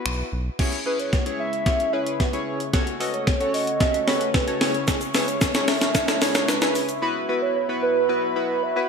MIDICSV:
0, 0, Header, 1, 6, 480
1, 0, Start_track
1, 0, Key_signature, 4, "minor"
1, 0, Tempo, 535714
1, 530, Time_signature, 4, 2, 24, 8
1, 7964, End_track
2, 0, Start_track
2, 0, Title_t, "Soft synth lead"
2, 0, Program_c, 0, 80
2, 772, Note_on_c, 0, 71, 84
2, 883, Note_off_c, 0, 71, 0
2, 891, Note_on_c, 0, 73, 94
2, 1002, Note_off_c, 0, 73, 0
2, 1010, Note_on_c, 0, 73, 102
2, 1118, Note_off_c, 0, 73, 0
2, 1251, Note_on_c, 0, 76, 119
2, 1730, Note_on_c, 0, 73, 100
2, 1743, Note_off_c, 0, 76, 0
2, 1965, Note_off_c, 0, 73, 0
2, 1970, Note_on_c, 0, 71, 83
2, 2305, Note_off_c, 0, 71, 0
2, 2691, Note_on_c, 0, 71, 86
2, 2803, Note_off_c, 0, 71, 0
2, 2811, Note_on_c, 0, 73, 97
2, 2922, Note_off_c, 0, 73, 0
2, 2931, Note_on_c, 0, 73, 104
2, 3154, Note_off_c, 0, 73, 0
2, 3170, Note_on_c, 0, 75, 119
2, 3649, Note_on_c, 0, 73, 100
2, 3662, Note_off_c, 0, 75, 0
2, 3885, Note_off_c, 0, 73, 0
2, 3890, Note_on_c, 0, 71, 81
2, 4225, Note_off_c, 0, 71, 0
2, 4609, Note_on_c, 0, 71, 87
2, 4728, Note_on_c, 0, 73, 93
2, 4742, Note_off_c, 0, 71, 0
2, 4845, Note_off_c, 0, 73, 0
2, 4850, Note_on_c, 0, 73, 104
2, 5090, Note_on_c, 0, 76, 122
2, 5103, Note_off_c, 0, 73, 0
2, 5570, Note_on_c, 0, 73, 100
2, 5584, Note_off_c, 0, 76, 0
2, 5810, Note_on_c, 0, 71, 86
2, 5824, Note_off_c, 0, 73, 0
2, 6170, Note_off_c, 0, 71, 0
2, 6529, Note_on_c, 0, 71, 83
2, 6649, Note_on_c, 0, 73, 88
2, 6663, Note_off_c, 0, 71, 0
2, 6764, Note_off_c, 0, 73, 0
2, 6770, Note_on_c, 0, 73, 100
2, 6878, Note_off_c, 0, 73, 0
2, 7010, Note_on_c, 0, 71, 105
2, 7456, Note_off_c, 0, 71, 0
2, 7491, Note_on_c, 0, 71, 96
2, 7732, Note_on_c, 0, 76, 105
2, 7745, Note_off_c, 0, 71, 0
2, 7964, Note_off_c, 0, 76, 0
2, 7964, End_track
3, 0, Start_track
3, 0, Title_t, "Synth keys"
3, 0, Program_c, 1, 88
3, 0, Note_on_c, 1, 59, 84
3, 0, Note_on_c, 1, 64, 77
3, 0, Note_on_c, 1, 66, 77
3, 0, Note_on_c, 1, 71, 94
3, 253, Note_off_c, 1, 59, 0
3, 254, Note_off_c, 1, 64, 0
3, 255, Note_off_c, 1, 66, 0
3, 255, Note_off_c, 1, 71, 0
3, 528, Note_on_c, 1, 61, 88
3, 530, Note_on_c, 1, 64, 77
3, 531, Note_on_c, 1, 68, 81
3, 533, Note_on_c, 1, 73, 96
3, 690, Note_off_c, 1, 61, 0
3, 691, Note_off_c, 1, 64, 0
3, 692, Note_off_c, 1, 68, 0
3, 693, Note_off_c, 1, 73, 0
3, 768, Note_on_c, 1, 61, 68
3, 770, Note_on_c, 1, 64, 65
3, 771, Note_on_c, 1, 68, 64
3, 773, Note_on_c, 1, 71, 75
3, 1011, Note_off_c, 1, 61, 0
3, 1012, Note_off_c, 1, 64, 0
3, 1012, Note_off_c, 1, 68, 0
3, 1013, Note_off_c, 1, 71, 0
3, 1129, Note_on_c, 1, 61, 67
3, 1130, Note_on_c, 1, 64, 67
3, 1131, Note_on_c, 1, 68, 65
3, 1133, Note_on_c, 1, 73, 76
3, 1371, Note_off_c, 1, 61, 0
3, 1372, Note_off_c, 1, 64, 0
3, 1372, Note_off_c, 1, 68, 0
3, 1373, Note_off_c, 1, 73, 0
3, 1488, Note_on_c, 1, 61, 74
3, 1490, Note_on_c, 1, 64, 67
3, 1491, Note_on_c, 1, 68, 67
3, 1493, Note_on_c, 1, 73, 80
3, 1650, Note_off_c, 1, 61, 0
3, 1651, Note_off_c, 1, 64, 0
3, 1652, Note_off_c, 1, 68, 0
3, 1653, Note_off_c, 1, 73, 0
3, 1728, Note_on_c, 1, 61, 68
3, 1729, Note_on_c, 1, 64, 66
3, 1731, Note_on_c, 1, 68, 64
3, 1732, Note_on_c, 1, 71, 79
3, 1971, Note_off_c, 1, 61, 0
3, 1971, Note_off_c, 1, 64, 0
3, 1972, Note_off_c, 1, 68, 0
3, 1973, Note_off_c, 1, 71, 0
3, 2088, Note_on_c, 1, 61, 71
3, 2089, Note_on_c, 1, 64, 66
3, 2090, Note_on_c, 1, 68, 64
3, 2093, Note_on_c, 1, 73, 77
3, 2331, Note_off_c, 1, 61, 0
3, 2331, Note_off_c, 1, 64, 0
3, 2332, Note_off_c, 1, 68, 0
3, 2333, Note_off_c, 1, 73, 0
3, 2447, Note_on_c, 1, 61, 85
3, 2449, Note_on_c, 1, 66, 79
3, 2451, Note_on_c, 1, 69, 77
3, 2452, Note_on_c, 1, 73, 97
3, 2610, Note_off_c, 1, 61, 0
3, 2611, Note_off_c, 1, 66, 0
3, 2611, Note_off_c, 1, 69, 0
3, 2612, Note_off_c, 1, 73, 0
3, 2688, Note_on_c, 1, 61, 69
3, 2690, Note_on_c, 1, 66, 67
3, 2690, Note_on_c, 1, 69, 66
3, 2693, Note_on_c, 1, 75, 75
3, 2931, Note_off_c, 1, 61, 0
3, 2932, Note_off_c, 1, 66, 0
3, 2932, Note_off_c, 1, 69, 0
3, 2933, Note_off_c, 1, 75, 0
3, 3049, Note_on_c, 1, 61, 72
3, 3050, Note_on_c, 1, 66, 69
3, 3052, Note_on_c, 1, 69, 68
3, 3053, Note_on_c, 1, 73, 79
3, 3291, Note_off_c, 1, 61, 0
3, 3292, Note_off_c, 1, 66, 0
3, 3293, Note_off_c, 1, 69, 0
3, 3293, Note_off_c, 1, 73, 0
3, 3409, Note_on_c, 1, 61, 73
3, 3411, Note_on_c, 1, 66, 71
3, 3412, Note_on_c, 1, 69, 69
3, 3413, Note_on_c, 1, 76, 84
3, 3571, Note_off_c, 1, 61, 0
3, 3572, Note_off_c, 1, 66, 0
3, 3572, Note_off_c, 1, 69, 0
3, 3573, Note_off_c, 1, 76, 0
3, 3648, Note_on_c, 1, 61, 73
3, 3650, Note_on_c, 1, 66, 65
3, 3652, Note_on_c, 1, 69, 66
3, 3653, Note_on_c, 1, 71, 80
3, 3891, Note_off_c, 1, 61, 0
3, 3892, Note_off_c, 1, 66, 0
3, 3893, Note_off_c, 1, 69, 0
3, 3893, Note_off_c, 1, 71, 0
3, 4008, Note_on_c, 1, 61, 75
3, 4009, Note_on_c, 1, 66, 66
3, 4010, Note_on_c, 1, 69, 66
3, 4012, Note_on_c, 1, 73, 80
3, 4118, Note_off_c, 1, 61, 0
3, 4122, Note_off_c, 1, 73, 0
3, 4129, Note_on_c, 1, 61, 78
3, 4130, Note_off_c, 1, 66, 0
3, 4130, Note_off_c, 1, 69, 0
3, 4130, Note_on_c, 1, 64, 71
3, 4131, Note_on_c, 1, 68, 70
3, 4133, Note_on_c, 1, 73, 89
3, 4513, Note_off_c, 1, 61, 0
3, 4514, Note_off_c, 1, 64, 0
3, 4515, Note_off_c, 1, 68, 0
3, 4516, Note_off_c, 1, 73, 0
3, 4609, Note_on_c, 1, 61, 71
3, 4610, Note_on_c, 1, 64, 67
3, 4612, Note_on_c, 1, 68, 65
3, 4614, Note_on_c, 1, 73, 81
3, 4851, Note_off_c, 1, 61, 0
3, 4852, Note_off_c, 1, 64, 0
3, 4853, Note_off_c, 1, 68, 0
3, 4854, Note_off_c, 1, 73, 0
3, 4968, Note_on_c, 1, 61, 77
3, 4969, Note_on_c, 1, 64, 70
3, 4971, Note_on_c, 1, 68, 69
3, 4972, Note_on_c, 1, 73, 83
3, 5211, Note_off_c, 1, 61, 0
3, 5211, Note_off_c, 1, 64, 0
3, 5212, Note_off_c, 1, 68, 0
3, 5213, Note_off_c, 1, 73, 0
3, 5328, Note_on_c, 1, 61, 74
3, 5329, Note_on_c, 1, 64, 72
3, 5331, Note_on_c, 1, 68, 70
3, 5333, Note_on_c, 1, 73, 86
3, 5490, Note_off_c, 1, 61, 0
3, 5491, Note_off_c, 1, 64, 0
3, 5492, Note_off_c, 1, 68, 0
3, 5492, Note_off_c, 1, 73, 0
3, 5569, Note_on_c, 1, 61, 76
3, 5570, Note_on_c, 1, 64, 68
3, 5572, Note_on_c, 1, 68, 68
3, 5573, Note_on_c, 1, 73, 85
3, 5811, Note_off_c, 1, 61, 0
3, 5812, Note_off_c, 1, 64, 0
3, 5813, Note_off_c, 1, 68, 0
3, 5813, Note_off_c, 1, 73, 0
3, 5928, Note_on_c, 1, 61, 75
3, 5929, Note_on_c, 1, 64, 70
3, 5931, Note_on_c, 1, 68, 69
3, 5933, Note_on_c, 1, 71, 86
3, 6171, Note_off_c, 1, 61, 0
3, 6171, Note_off_c, 1, 64, 0
3, 6172, Note_off_c, 1, 68, 0
3, 6173, Note_off_c, 1, 71, 0
3, 6289, Note_on_c, 1, 59, 91
3, 6290, Note_on_c, 1, 64, 80
3, 6292, Note_on_c, 1, 66, 83
3, 6294, Note_on_c, 1, 71, 104
3, 6451, Note_off_c, 1, 59, 0
3, 6451, Note_off_c, 1, 64, 0
3, 6452, Note_off_c, 1, 66, 0
3, 6453, Note_off_c, 1, 71, 0
3, 6528, Note_on_c, 1, 59, 75
3, 6529, Note_on_c, 1, 64, 68
3, 6531, Note_on_c, 1, 66, 70
3, 6533, Note_on_c, 1, 71, 84
3, 6771, Note_off_c, 1, 59, 0
3, 6772, Note_off_c, 1, 64, 0
3, 6772, Note_off_c, 1, 66, 0
3, 6773, Note_off_c, 1, 71, 0
3, 6888, Note_on_c, 1, 59, 78
3, 6890, Note_on_c, 1, 64, 69
3, 6891, Note_on_c, 1, 66, 71
3, 6893, Note_on_c, 1, 71, 81
3, 7131, Note_off_c, 1, 59, 0
3, 7132, Note_off_c, 1, 64, 0
3, 7132, Note_off_c, 1, 66, 0
3, 7133, Note_off_c, 1, 71, 0
3, 7248, Note_on_c, 1, 59, 77
3, 7249, Note_on_c, 1, 64, 71
3, 7251, Note_on_c, 1, 66, 70
3, 7252, Note_on_c, 1, 71, 86
3, 7410, Note_off_c, 1, 59, 0
3, 7411, Note_off_c, 1, 64, 0
3, 7412, Note_off_c, 1, 66, 0
3, 7412, Note_off_c, 1, 71, 0
3, 7488, Note_on_c, 1, 59, 75
3, 7489, Note_on_c, 1, 64, 69
3, 7491, Note_on_c, 1, 66, 71
3, 7493, Note_on_c, 1, 71, 83
3, 7731, Note_off_c, 1, 59, 0
3, 7731, Note_off_c, 1, 64, 0
3, 7732, Note_off_c, 1, 66, 0
3, 7733, Note_off_c, 1, 71, 0
3, 7849, Note_on_c, 1, 59, 76
3, 7850, Note_on_c, 1, 64, 70
3, 7853, Note_on_c, 1, 66, 73
3, 7854, Note_on_c, 1, 71, 85
3, 7964, Note_off_c, 1, 59, 0
3, 7964, Note_off_c, 1, 64, 0
3, 7964, Note_off_c, 1, 66, 0
3, 7964, Note_off_c, 1, 71, 0
3, 7964, End_track
4, 0, Start_track
4, 0, Title_t, "Analog synth pad"
4, 0, Program_c, 2, 89
4, 528, Note_on_c, 2, 64, 78
4, 529, Note_on_c, 2, 49, 82
4, 529, Note_on_c, 2, 56, 73
4, 529, Note_on_c, 2, 73, 90
4, 2430, Note_off_c, 2, 56, 0
4, 2430, Note_off_c, 2, 64, 0
4, 2451, Note_on_c, 2, 57, 81
4, 2451, Note_on_c, 2, 66, 76
4, 4114, Note_off_c, 2, 57, 0
4, 4114, Note_off_c, 2, 66, 0
4, 4132, Note_on_c, 2, 56, 72
4, 4132, Note_on_c, 2, 64, 78
4, 6254, Note_off_c, 2, 49, 0
4, 6254, Note_off_c, 2, 73, 0
4, 6270, Note_off_c, 2, 56, 0
4, 6291, Note_on_c, 2, 54, 77
4, 6292, Note_on_c, 2, 47, 86
4, 6292, Note_on_c, 2, 71, 91
4, 7964, Note_off_c, 2, 47, 0
4, 7964, Note_off_c, 2, 54, 0
4, 7964, Note_off_c, 2, 64, 0
4, 7964, Note_off_c, 2, 71, 0
4, 7964, End_track
5, 0, Start_track
5, 0, Title_t, "Analog synth bass"
5, 0, Program_c, 3, 38
5, 51, Note_on_c, 3, 35, 98
5, 207, Note_off_c, 3, 35, 0
5, 291, Note_on_c, 3, 35, 91
5, 447, Note_off_c, 3, 35, 0
5, 7964, End_track
6, 0, Start_track
6, 0, Title_t, "Drums"
6, 50, Note_on_c, 9, 26, 106
6, 140, Note_off_c, 9, 26, 0
6, 530, Note_on_c, 9, 36, 103
6, 530, Note_on_c, 9, 38, 53
6, 530, Note_on_c, 9, 42, 80
6, 530, Note_on_c, 9, 49, 94
6, 619, Note_off_c, 9, 36, 0
6, 619, Note_off_c, 9, 38, 0
6, 619, Note_off_c, 9, 42, 0
6, 619, Note_off_c, 9, 49, 0
6, 650, Note_on_c, 9, 42, 44
6, 739, Note_off_c, 9, 42, 0
6, 891, Note_on_c, 9, 42, 47
6, 981, Note_off_c, 9, 42, 0
6, 1011, Note_on_c, 9, 38, 56
6, 1012, Note_on_c, 9, 36, 113
6, 1012, Note_on_c, 9, 42, 66
6, 1100, Note_off_c, 9, 38, 0
6, 1102, Note_off_c, 9, 36, 0
6, 1102, Note_off_c, 9, 42, 0
6, 1130, Note_on_c, 9, 42, 55
6, 1220, Note_off_c, 9, 42, 0
6, 1371, Note_on_c, 9, 42, 50
6, 1460, Note_off_c, 9, 42, 0
6, 1489, Note_on_c, 9, 36, 111
6, 1491, Note_on_c, 9, 38, 61
6, 1493, Note_on_c, 9, 42, 70
6, 1578, Note_off_c, 9, 36, 0
6, 1580, Note_off_c, 9, 38, 0
6, 1582, Note_off_c, 9, 42, 0
6, 1612, Note_on_c, 9, 42, 57
6, 1702, Note_off_c, 9, 42, 0
6, 1850, Note_on_c, 9, 42, 57
6, 1940, Note_off_c, 9, 42, 0
6, 1971, Note_on_c, 9, 36, 109
6, 1971, Note_on_c, 9, 38, 66
6, 1972, Note_on_c, 9, 42, 49
6, 2061, Note_off_c, 9, 36, 0
6, 2061, Note_off_c, 9, 38, 0
6, 2062, Note_off_c, 9, 42, 0
6, 2091, Note_on_c, 9, 42, 48
6, 2181, Note_off_c, 9, 42, 0
6, 2331, Note_on_c, 9, 42, 49
6, 2421, Note_off_c, 9, 42, 0
6, 2451, Note_on_c, 9, 36, 103
6, 2451, Note_on_c, 9, 38, 73
6, 2451, Note_on_c, 9, 42, 80
6, 2540, Note_off_c, 9, 36, 0
6, 2541, Note_off_c, 9, 38, 0
6, 2541, Note_off_c, 9, 42, 0
6, 2571, Note_on_c, 9, 42, 45
6, 2661, Note_off_c, 9, 42, 0
6, 2692, Note_on_c, 9, 46, 84
6, 2782, Note_off_c, 9, 46, 0
6, 2812, Note_on_c, 9, 42, 50
6, 2902, Note_off_c, 9, 42, 0
6, 2931, Note_on_c, 9, 38, 76
6, 2932, Note_on_c, 9, 36, 117
6, 2933, Note_on_c, 9, 42, 69
6, 3021, Note_off_c, 9, 38, 0
6, 3022, Note_off_c, 9, 36, 0
6, 3022, Note_off_c, 9, 42, 0
6, 3052, Note_on_c, 9, 42, 55
6, 3141, Note_off_c, 9, 42, 0
6, 3173, Note_on_c, 9, 46, 67
6, 3263, Note_off_c, 9, 46, 0
6, 3291, Note_on_c, 9, 42, 52
6, 3381, Note_off_c, 9, 42, 0
6, 3409, Note_on_c, 9, 36, 115
6, 3411, Note_on_c, 9, 38, 76
6, 3413, Note_on_c, 9, 42, 77
6, 3499, Note_off_c, 9, 36, 0
6, 3500, Note_off_c, 9, 38, 0
6, 3502, Note_off_c, 9, 42, 0
6, 3533, Note_on_c, 9, 42, 54
6, 3622, Note_off_c, 9, 42, 0
6, 3652, Note_on_c, 9, 38, 82
6, 3652, Note_on_c, 9, 46, 80
6, 3741, Note_off_c, 9, 38, 0
6, 3741, Note_off_c, 9, 46, 0
6, 3770, Note_on_c, 9, 42, 60
6, 3860, Note_off_c, 9, 42, 0
6, 3891, Note_on_c, 9, 36, 110
6, 3891, Note_on_c, 9, 38, 88
6, 3892, Note_on_c, 9, 42, 51
6, 3981, Note_off_c, 9, 36, 0
6, 3981, Note_off_c, 9, 38, 0
6, 3982, Note_off_c, 9, 42, 0
6, 4010, Note_on_c, 9, 42, 49
6, 4100, Note_off_c, 9, 42, 0
6, 4131, Note_on_c, 9, 38, 96
6, 4132, Note_on_c, 9, 46, 76
6, 4221, Note_off_c, 9, 38, 0
6, 4221, Note_off_c, 9, 46, 0
6, 4251, Note_on_c, 9, 42, 51
6, 4340, Note_off_c, 9, 42, 0
6, 4370, Note_on_c, 9, 36, 107
6, 4370, Note_on_c, 9, 38, 96
6, 4370, Note_on_c, 9, 42, 84
6, 4370, Note_on_c, 9, 82, 88
6, 4459, Note_off_c, 9, 38, 0
6, 4459, Note_off_c, 9, 42, 0
6, 4459, Note_off_c, 9, 82, 0
6, 4460, Note_off_c, 9, 36, 0
6, 4489, Note_on_c, 9, 42, 47
6, 4489, Note_on_c, 9, 82, 47
6, 4579, Note_off_c, 9, 42, 0
6, 4579, Note_off_c, 9, 82, 0
6, 4610, Note_on_c, 9, 38, 100
6, 4611, Note_on_c, 9, 46, 91
6, 4611, Note_on_c, 9, 82, 62
6, 4614, Note_off_c, 9, 82, 0
6, 4614, Note_on_c, 9, 82, 52
6, 4700, Note_off_c, 9, 38, 0
6, 4700, Note_off_c, 9, 46, 0
6, 4703, Note_off_c, 9, 82, 0
6, 4731, Note_on_c, 9, 42, 50
6, 4731, Note_on_c, 9, 82, 46
6, 4821, Note_off_c, 9, 42, 0
6, 4821, Note_off_c, 9, 82, 0
6, 4850, Note_on_c, 9, 38, 100
6, 4850, Note_on_c, 9, 82, 68
6, 4851, Note_off_c, 9, 82, 0
6, 4851, Note_on_c, 9, 42, 70
6, 4851, Note_on_c, 9, 82, 67
6, 4852, Note_on_c, 9, 36, 119
6, 4940, Note_off_c, 9, 38, 0
6, 4941, Note_off_c, 9, 36, 0
6, 4941, Note_off_c, 9, 42, 0
6, 4941, Note_off_c, 9, 82, 0
6, 4970, Note_on_c, 9, 38, 101
6, 4970, Note_on_c, 9, 42, 58
6, 4970, Note_on_c, 9, 82, 58
6, 4972, Note_off_c, 9, 82, 0
6, 4972, Note_on_c, 9, 82, 49
6, 5060, Note_off_c, 9, 38, 0
6, 5060, Note_off_c, 9, 42, 0
6, 5061, Note_off_c, 9, 82, 0
6, 5089, Note_on_c, 9, 38, 97
6, 5091, Note_on_c, 9, 46, 65
6, 5091, Note_on_c, 9, 82, 47
6, 5179, Note_off_c, 9, 38, 0
6, 5180, Note_off_c, 9, 46, 0
6, 5180, Note_off_c, 9, 82, 0
6, 5209, Note_on_c, 9, 82, 47
6, 5210, Note_off_c, 9, 82, 0
6, 5210, Note_on_c, 9, 38, 104
6, 5210, Note_on_c, 9, 42, 55
6, 5210, Note_on_c, 9, 82, 76
6, 5299, Note_off_c, 9, 38, 0
6, 5300, Note_off_c, 9, 42, 0
6, 5300, Note_off_c, 9, 82, 0
6, 5328, Note_on_c, 9, 36, 116
6, 5329, Note_on_c, 9, 82, 74
6, 5330, Note_on_c, 9, 38, 104
6, 5332, Note_off_c, 9, 82, 0
6, 5332, Note_on_c, 9, 42, 76
6, 5332, Note_on_c, 9, 82, 80
6, 5418, Note_off_c, 9, 36, 0
6, 5420, Note_off_c, 9, 38, 0
6, 5422, Note_off_c, 9, 42, 0
6, 5422, Note_off_c, 9, 82, 0
6, 5449, Note_on_c, 9, 82, 48
6, 5450, Note_on_c, 9, 38, 102
6, 5451, Note_off_c, 9, 82, 0
6, 5451, Note_on_c, 9, 42, 58
6, 5451, Note_on_c, 9, 82, 56
6, 5540, Note_off_c, 9, 38, 0
6, 5541, Note_off_c, 9, 42, 0
6, 5541, Note_off_c, 9, 82, 0
6, 5570, Note_on_c, 9, 38, 107
6, 5570, Note_on_c, 9, 46, 82
6, 5570, Note_on_c, 9, 82, 57
6, 5575, Note_off_c, 9, 82, 0
6, 5575, Note_on_c, 9, 82, 60
6, 5660, Note_off_c, 9, 38, 0
6, 5660, Note_off_c, 9, 46, 0
6, 5664, Note_off_c, 9, 82, 0
6, 5687, Note_on_c, 9, 82, 56
6, 5689, Note_off_c, 9, 82, 0
6, 5689, Note_on_c, 9, 42, 60
6, 5689, Note_on_c, 9, 82, 81
6, 5690, Note_on_c, 9, 38, 118
6, 5779, Note_off_c, 9, 42, 0
6, 5779, Note_off_c, 9, 82, 0
6, 5780, Note_off_c, 9, 38, 0
6, 5811, Note_on_c, 9, 38, 108
6, 5812, Note_on_c, 9, 42, 53
6, 5812, Note_on_c, 9, 82, 79
6, 5900, Note_off_c, 9, 38, 0
6, 5901, Note_off_c, 9, 42, 0
6, 5901, Note_off_c, 9, 82, 0
6, 5929, Note_on_c, 9, 82, 50
6, 5930, Note_off_c, 9, 82, 0
6, 5930, Note_on_c, 9, 38, 106
6, 5930, Note_on_c, 9, 42, 50
6, 5930, Note_on_c, 9, 82, 50
6, 6019, Note_off_c, 9, 42, 0
6, 6019, Note_off_c, 9, 82, 0
6, 6020, Note_off_c, 9, 38, 0
6, 6049, Note_on_c, 9, 82, 51
6, 6051, Note_off_c, 9, 82, 0
6, 6051, Note_on_c, 9, 46, 74
6, 6051, Note_on_c, 9, 82, 55
6, 6141, Note_off_c, 9, 46, 0
6, 6141, Note_off_c, 9, 82, 0
6, 6169, Note_on_c, 9, 82, 48
6, 6170, Note_off_c, 9, 82, 0
6, 6170, Note_on_c, 9, 42, 55
6, 6170, Note_on_c, 9, 82, 74
6, 6260, Note_off_c, 9, 42, 0
6, 6260, Note_off_c, 9, 82, 0
6, 7964, End_track
0, 0, End_of_file